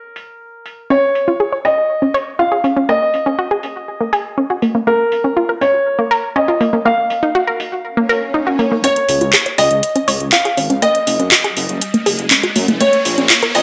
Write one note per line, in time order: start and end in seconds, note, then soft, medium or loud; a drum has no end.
0.00 0.81 A#4 medium
0.16 open hi-hat loud
0.66 open hi-hat loud
0.90 0.94 C#4 medium
0.90 1.55 C#5 medium
1.15 open hi-hat loud
1.28 1.31 F4 medium
1.40 1.43 G#4 medium
1.52 1.56 C#5 medium
1.65 2.29 D#5 medium
1.65 open hi-hat medium
2.02 2.05 C#4 medium
2.14 2.20 C#5 loud
2.14 open hi-hat loud
2.39 2.43 F4 medium
2.39 2.84 F5 medium
2.52 2.55 G#4 medium
2.64 2.72 C#4 medium
2.64 open hi-hat loud
2.77 2.80 C#4 medium
2.89 2.92 A#3 medium
2.89 4.77 D#5 medium
3.14 open hi-hat loud
3.26 3.29 C#4 medium
3.39 3.42 F#4 medium
3.51 3.54 G#4 medium
3.63 open hi-hat medium
4.01 4.04 A#3 medium
4.13 4.18 G#4 loud
4.13 open hi-hat medium
4.38 4.41 C#4 medium
4.50 4.53 F#4 medium
4.62 4.71 A#3 medium
4.62 open hi-hat loud
4.75 4.78 A#3 medium
4.87 4.90 A#3 medium
4.87 5.52 A#4 medium
5.12 open hi-hat loud
5.24 5.28 C#4 medium
5.37 5.40 F4 medium
5.49 5.52 A#4 medium
5.61 6.26 C#5 medium
5.61 open hi-hat medium
5.99 6.02 A#3 medium
6.11 6.17 A#4 loud
6.11 open hi-hat loud
6.36 6.39 C#4 medium
6.36 6.81 D#5 medium
6.48 6.52 F4 medium
6.61 6.69 A#3 medium
6.61 open hi-hat medium
6.73 6.76 A#3 medium
6.85 6.89 A#3 medium
6.85 8.74 F5 medium
7.10 open hi-hat medium
7.23 7.26 D#4 medium
7.35 7.38 F#4 medium
7.47 7.51 A#4 medium
7.60 open hi-hat loud
7.85 swell medium
7.97 8.00 A#3 medium
8.09 8.15 A#4 medium
8.09 open hi-hat loud
8.34 8.38 D#4 medium
8.47 8.50 F#4 medium
8.59 8.67 A#3 medium
8.59 open hi-hat loud
8.72 8.75 A#3 medium
8.84 8.87 C#4 medium
8.84 9.48 C#5 loud
8.84 closed hi-hat medium
8.84 riser medium
8.96 closed hi-hat soft
9.09 9.19 C#2 medium
9.09 open hi-hat loud
9.21 9.32 C#2 medium
9.21 9.24 F4 medium
9.21 closed hi-hat soft
9.33 9.37 G#4 medium
9.33 clap loud
9.33 closed hi-hat medium
9.46 9.49 C#5 medium
9.46 closed hi-hat soft
9.58 9.69 C#2 medium
9.58 10.23 D#5 medium
9.58 open hi-hat loud
9.71 9.81 C#2 medium
9.71 closed hi-hat soft
9.83 closed hi-hat medium
9.96 9.99 C#4 medium
9.96 closed hi-hat soft
10.08 10.18 C#2 medium
10.08 10.13 C#5 loud
10.08 open hi-hat loud
10.20 10.31 C#2 medium
10.20 closed hi-hat soft
10.32 10.36 F4 medium
10.32 10.77 F5 medium
10.32 clap loud
10.32 closed hi-hat medium
10.45 10.48 G#4 medium
10.45 closed hi-hat soft
10.57 10.68 G#1 medium
10.57 10.66 C#4 medium
10.57 open hi-hat loud
10.70 10.80 C#2 medium
10.70 10.73 C#4 medium
10.70 closed hi-hat soft
10.82 10.86 A#3 medium
10.82 12.71 D#5 medium
10.82 closed hi-hat medium
10.95 closed hi-hat soft
11.07 11.18 F#1 medium
11.07 open hi-hat loud
11.19 11.30 F#1 medium
11.19 11.23 C#4 medium
11.19 closed hi-hat soft
11.31 11.35 F#4 medium
11.31 clap loud
11.31 closed hi-hat medium
11.44 11.48 G#4 medium
11.44 closed hi-hat soft
11.57 11.67 F#1 loud
11.57 open hi-hat loud
11.69 11.80 F#1 medium
11.69 closed hi-hat soft
11.81 closed hi-hat medium
11.94 11.97 A#3 medium
11.94 closed hi-hat soft
12.06 12.17 F#1 medium
12.06 12.12 G#4 loud
12.06 open hi-hat loud
12.19 12.29 F#1 medium
12.19 closed hi-hat soft
12.31 12.34 C#4 medium
12.31 clap loud
12.31 closed hi-hat medium
12.43 12.47 F#4 medium
12.43 closed hi-hat soft
12.56 12.66 F#2 medium
12.56 12.64 A#3 medium
12.56 open hi-hat loud
12.68 12.79 F#1 medium
12.68 12.72 A#3 medium
12.68 closed hi-hat soft
12.80 12.84 A#3 medium
12.80 13.45 C#5 medium
12.80 closed hi-hat medium
12.93 closed hi-hat soft
13.05 13.16 A#1 medium
13.05 open hi-hat loud
13.18 13.28 A#1 medium
13.18 13.21 C#4 medium
13.18 closed hi-hat soft
13.30 13.33 F4 medium
13.30 clap loud
13.30 closed hi-hat medium
13.43 13.46 A#4 medium
13.43 closed hi-hat soft
13.55 13.63 A#1 medium
13.55 13.63 D#5 medium
13.55 open hi-hat loud